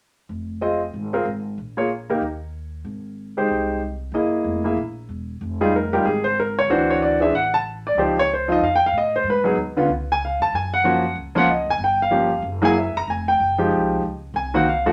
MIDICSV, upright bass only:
0, 0, Header, 1, 2, 480
1, 0, Start_track
1, 0, Key_signature, -4, "minor"
1, 0, Tempo, 319319
1, 445, Time_signature, 4, 2, 24, 8
1, 22437, End_track
2, 0, Start_track
2, 0, Title_t, "Upright bass"
2, 0, Program_c, 0, 32
2, 437, Note_on_c, 0, 29, 70
2, 1355, Note_off_c, 0, 29, 0
2, 1405, Note_on_c, 0, 32, 70
2, 1853, Note_off_c, 0, 32, 0
2, 1877, Note_on_c, 0, 32, 63
2, 2330, Note_off_c, 0, 32, 0
2, 2371, Note_on_c, 0, 34, 69
2, 3284, Note_off_c, 0, 34, 0
2, 3321, Note_on_c, 0, 39, 74
2, 4239, Note_off_c, 0, 39, 0
2, 4278, Note_on_c, 0, 32, 73
2, 5198, Note_off_c, 0, 32, 0
2, 5235, Note_on_c, 0, 36, 73
2, 6157, Note_off_c, 0, 36, 0
2, 6189, Note_on_c, 0, 30, 75
2, 6648, Note_off_c, 0, 30, 0
2, 6679, Note_on_c, 0, 29, 71
2, 7133, Note_off_c, 0, 29, 0
2, 7159, Note_on_c, 0, 34, 73
2, 7614, Note_off_c, 0, 34, 0
2, 7647, Note_on_c, 0, 28, 67
2, 8098, Note_off_c, 0, 28, 0
2, 8131, Note_on_c, 0, 29, 75
2, 9046, Note_off_c, 0, 29, 0
2, 9088, Note_on_c, 0, 32, 73
2, 10005, Note_off_c, 0, 32, 0
2, 10042, Note_on_c, 0, 38, 79
2, 10961, Note_off_c, 0, 38, 0
2, 10994, Note_on_c, 0, 33, 82
2, 11918, Note_off_c, 0, 33, 0
2, 11950, Note_on_c, 0, 37, 77
2, 12876, Note_off_c, 0, 37, 0
2, 12934, Note_on_c, 0, 41, 78
2, 13383, Note_off_c, 0, 41, 0
2, 13408, Note_on_c, 0, 45, 67
2, 13859, Note_off_c, 0, 45, 0
2, 13879, Note_on_c, 0, 44, 83
2, 14334, Note_off_c, 0, 44, 0
2, 14363, Note_on_c, 0, 39, 77
2, 14816, Note_off_c, 0, 39, 0
2, 14855, Note_on_c, 0, 37, 76
2, 15577, Note_off_c, 0, 37, 0
2, 15628, Note_on_c, 0, 41, 67
2, 15801, Note_off_c, 0, 41, 0
2, 15820, Note_on_c, 0, 42, 77
2, 16729, Note_off_c, 0, 42, 0
2, 16768, Note_on_c, 0, 37, 78
2, 17491, Note_off_c, 0, 37, 0
2, 17527, Note_on_c, 0, 30, 70
2, 17695, Note_off_c, 0, 30, 0
2, 17704, Note_on_c, 0, 31, 80
2, 18628, Note_off_c, 0, 31, 0
2, 18676, Note_on_c, 0, 30, 79
2, 19403, Note_off_c, 0, 30, 0
2, 19455, Note_on_c, 0, 30, 67
2, 19631, Note_off_c, 0, 30, 0
2, 19653, Note_on_c, 0, 29, 78
2, 20097, Note_off_c, 0, 29, 0
2, 20139, Note_on_c, 0, 30, 78
2, 20579, Note_off_c, 0, 30, 0
2, 20606, Note_on_c, 0, 36, 78
2, 21052, Note_off_c, 0, 36, 0
2, 21087, Note_on_c, 0, 37, 73
2, 21532, Note_off_c, 0, 37, 0
2, 21553, Note_on_c, 0, 36, 84
2, 22278, Note_off_c, 0, 36, 0
2, 22325, Note_on_c, 0, 40, 66
2, 22437, Note_off_c, 0, 40, 0
2, 22437, End_track
0, 0, End_of_file